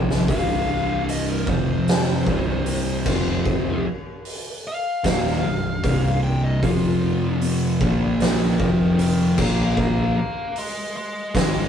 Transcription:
Already playing: picked electric bass F1, distorted electric guitar F2 C3 F3
0.10 snare
0.28 picked electric bass C1, distorted electric guitar C2 G2 C3, lead electric guitar F5, kick, open hi-hat
1.09 lead electric guitar D#5, open hi-hat
1.29 lead electric guitar A#4
1.47 picked electric bass F1, distorted electric guitar F2 C3 F3, lead electric guitar C5, kick
1.87 snare, open hi-hat
2.26 picked electric bass C1, distorted electric guitar C2 G2 C3, kick
2.66 open hi-hat
3.05 picked electric bass F1, distorted electric guitar F2 C3 F3, kick, crash
3.46 kick
4.25 open hi-hat
4.67 lead electric guitar F5
5.04 picked electric bass D#1, distorted electric guitar D#2 A#2 D#3, kick, snare, open hi-hat
5.26 snare
5.44 picked electric bass C1, distorted electric guitar C2 G2
5.83 picked electric bass C1, distorted electric guitar C2 G2 C3, kick, open hi-hat
6.23 lead electric guitar G5
6.43 lead electric guitar D#5
6.62 picked electric bass F1, distorted electric guitar F2 C3 F3, lead electric guitar F4, kick, open hi-hat
7.41 open hi-hat
7.80 picked electric bass A#1, distorted electric guitar A#2 F3 A#3, kick
8.20 lead electric guitar A#4 G5, snare, open hi-hat
8.59 picked electric bass F1, distorted electric guitar F2 C3 F3, lead electric guitar A#4 G5, kick
8.99 lead electric guitar A#4 G5, open hi-hat
9.38 picked electric bass A#1, distorted electric guitar A#2 F3 A#3, lead electric guitar F5 A#5, kick, crash
9.77 lead electric guitar F5 A#5, kick
10.18 lead electric guitar F5 A#5
10.56 lead electric guitar D#5 C6, open hi-hat
10.97 lead electric guitar D#5 C6
11.34 picked electric bass G#1, distorted electric guitar G#2 D#3 G#3, lead electric guitar D#5 C6, kick, snare, open hi-hat

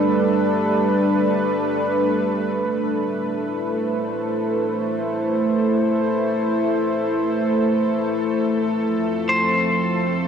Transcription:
Already playing: analog synth pad G3 D4 A4 B4, synth drone A3 A4
2.54 synth drone A3 A4
2.58 analog synth pad A3
3.20 analog synth pad E4
3.62 analog synth pad C5
8.79 analog synth pad F3
9.08 analog synth pad C4
9.29 clean electric guitar C5

